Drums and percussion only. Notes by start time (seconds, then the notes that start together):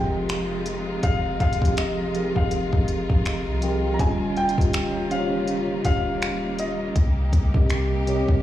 0.29 finger snap, closed hi-hat
0.66 closed hi-hat
1.03 kick, closed hi-hat
1.40 kick, closed hi-hat
1.53 closed hi-hat
1.62 kick, closed hi-hat
1.77 finger snap, closed hi-hat
2.15 closed hi-hat
2.36 kick
2.51 closed hi-hat
2.73 kick
2.88 closed hi-hat
3.10 kick
3.25 finger snap, closed hi-hat
3.62 closed hi-hat
3.99 kick, closed hi-hat
4.37 closed hi-hat
4.49 closed hi-hat
4.58 kick, closed hi-hat
4.73 finger snap, closed hi-hat
5.11 closed hi-hat
5.48 closed hi-hat
5.85 kick, closed hi-hat
6.22 finger snap, closed hi-hat
6.59 closed hi-hat
6.96 kick, closed hi-hat
7.33 kick, closed hi-hat
7.54 kick
7.70 finger snap, closed hi-hat
8.07 closed hi-hat
8.28 kick